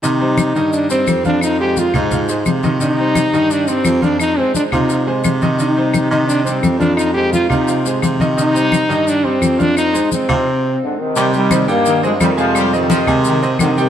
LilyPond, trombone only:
\new Staff \with { instrumentName = "Trombone" } { \time 4/4 \key f \dorian \tempo 4 = 172 ees'2 d'8 c'4 d'8 | ees'8 g'8 f'8 ees'4 r4. | ees'2 d'8 c'4 d'8 | ees'8 c'8 d'8 ees'4 r4. |
ees'2 d'8 c'4 d'8 | ees'8 g'8 f'8 ees'4 r4. | ees'2 d'8 c'4 d'8 | ees'4 c'2~ c'8 r8 |
r1 | r1 | }